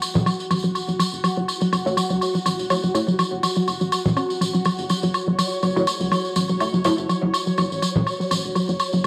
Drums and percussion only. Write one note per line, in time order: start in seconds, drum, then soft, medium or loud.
0.02 tambourine medium
0.02 low woodblock soft
0.15 tambourine soft
0.15 low conga medium
0.26 tambourine soft
0.26 low woodblock medium
0.40 tambourine soft
0.51 tambourine medium
0.51 low woodblock medium
0.64 tambourine soft
0.75 tambourine soft
0.75 low woodblock soft
0.89 tambourine soft
1.00 tambourine loud
1.00 low woodblock medium
1.14 tambourine soft
1.24 tambourine medium
1.24 low woodblock medium
1.48 tambourine medium
1.48 low woodblock soft
1.61 tambourine soft
1.73 tambourine medium
1.73 low woodblock medium
1.87 tambourine soft
1.97 tambourine loud
1.97 low woodblock medium
2.10 tambourine soft
2.21 tambourine medium
2.21 low woodblock soft
2.35 tambourine soft
2.46 tambourine medium
2.46 low woodblock medium
2.59 tambourine soft
2.70 tambourine medium
2.70 low woodblock medium
2.83 tambourine soft
2.95 tambourine medium
2.95 low woodblock soft
3.08 tambourine soft
3.19 tambourine medium
3.19 low woodblock medium
3.43 tambourine medium
3.43 low woodblock medium
3.56 tambourine soft
3.68 tambourine medium
3.68 low woodblock soft
3.81 tambourine soft
3.92 tambourine medium
3.92 low woodblock medium
4.06 tambourine soft
4.06 low conga medium
4.17 tambourine soft
4.17 low woodblock medium
4.30 tambourine soft
4.41 tambourine medium
4.41 low woodblock soft
4.54 tambourine soft
4.65 tambourine soft
4.65 low woodblock medium
4.78 tambourine soft
4.89 tambourine medium
4.89 low woodblock soft
5.03 tambourine soft
5.14 tambourine soft
5.14 low woodblock medium
5.38 tambourine medium
5.38 low woodblock medium
5.52 tambourine soft
5.63 tambourine soft
5.63 low woodblock soft
5.77 tambourine soft
5.87 tambourine medium
5.87 low woodblock medium
6.01 tambourine soft
6.12 tambourine soft
6.12 low woodblock medium
6.25 tambourine soft
6.36 tambourine medium
6.36 low woodblock soft
6.49 tambourine soft
6.60 tambourine soft
6.60 low woodblock medium
6.74 tambourine soft
6.84 tambourine medium
6.84 low woodblock medium
6.98 tambourine soft
7.09 tambourine soft
7.09 low woodblock soft
7.34 tambourine medium
7.34 low woodblock medium
7.47 tambourine soft
7.58 tambourine soft
7.58 low woodblock medium
7.72 tambourine soft
7.82 tambourine medium
7.82 low woodblock soft
7.96 tambourine soft
7.96 low conga medium
8.07 tambourine soft
8.07 low woodblock medium
8.21 tambourine soft
8.31 tambourine medium
8.31 low woodblock medium
8.46 tambourine soft
8.56 tambourine soft
8.56 low woodblock soft
8.69 tambourine soft
8.80 tambourine medium
8.80 low woodblock medium
8.93 tambourine soft